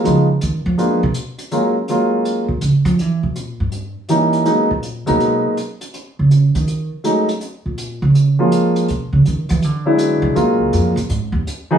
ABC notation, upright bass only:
X:1
M:4/4
L:1/8
Q:"Swing" 1/4=163
K:Bbphr
V:1 name="Upright bass" clef=bass
D,2 E, F,2 C, z2 | z4 z B,, D, F, | =E, C, B,, =G,,2 z3 | z B,,2 C,2 z3 |
z D,2 E,2 z3 | z B,,2 D,2 z3 | =B,, ^C, ^D, _F, =D,3 B,, | B,, D,, F,, B,, A,, E,, z2 |]